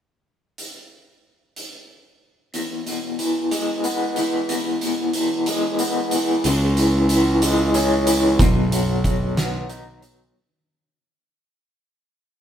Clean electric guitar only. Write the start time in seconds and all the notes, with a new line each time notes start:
2.54 E2
2.86 B2
3.19 E3
3.51 G#3
3.84 B3
4.17 E3
4.49 E2
4.82 B2
5.15 E3
5.47 G#3
5.80 B3
6.12 E3
6.45 C#3
6.77 E3
7.10 E3
7.43 G#3
7.75 C#4
8.07 E3
8.40 B2
8.72 F#3
9.05 F#3
9.37 B3
9.69 D#4
10.02 F#3